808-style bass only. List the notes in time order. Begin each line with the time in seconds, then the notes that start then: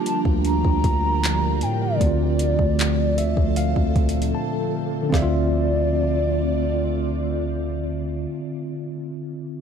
0.26 D2
0.65 D2
1.63 A2
2.01 D2
2.59 D2
3.37 D2
3.76 D2
5.13 D2